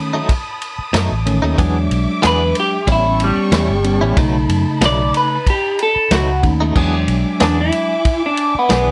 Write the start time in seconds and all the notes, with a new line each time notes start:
Already playing: D#3 A3 C#4 A5 B5 D#6
0.13 F#3 A3 D#4
0.29 kick, ride
0.61 ride
0.78 muted fingered electric bass stroke
0.93 F#2 B2 F#3 A3 D#4, snare, ride
1.10 A1
1.25 D#3 A3 C#4, ride
1.42 D#2 F#3 A3 D#4
1.58 E2 E3 F#3 G#3 B3 D4 G#4 E5 D6, kick, ride
1.91 B1, ride
2.22 E2 E3 B3 D4 G#4, snare, ride
2.27 B4
2.55 ride
2.60 G4
2.86 A1 A2 G3 B3 C#4 E4 G5 A5 C#6, kick, ride
2.92 E4
3.20 ride
3.24 G3
3.37 muted fingered electric bass stroke
3.52 E2 A2 G3 C#4 E4, snare, ride
3.69 G1
3.84 G3 B3 C#4, ride
4.01 A1 G3 C#4 E4
4.16 B1 B2 C#3 F#3 A3 D#4 B5, kick, ride
4.49 F#2, ride
4.81 B1 B2 F#3 A3 D#4, snare, ride
4.85 D5
5.14 B4, ride
5.46 G4, kick, ride
5.79 A4, ride
5.96 muted fingered electric bass stroke
6.11 C#2 B2 F#3 A3 D#4 F#4, snare, ride
6.43 D#2 A3 C#4 D#4, kick, ride
6.60 F#3 A3 D#4
6.75 E2 E3 F#3 G#3 B3 D4 G#4 E5 G#5 D6, kick, crash
7.08 B1, ride
7.40 E2 E3 B3 D4 G#4, snare, ride
7.61 E4
7.72 ride
8.05 kick, ride
8.26 D4
8.37 ride
8.55 muted fingered electric bass stroke
8.59 B3
8.69 B1 E3 B3 D4 G#4, snare, ride
8.87 D2